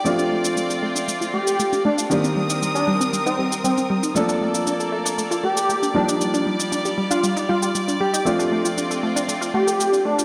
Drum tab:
SH |xx-xxx-xxx-xxx-x|xx-xxx-xxx-xxx-x|xx-xxx-xxx-xxx-x|xx-xxx-xxx-xxx-x|

SH |xx-xxx-xxx-xxx-x|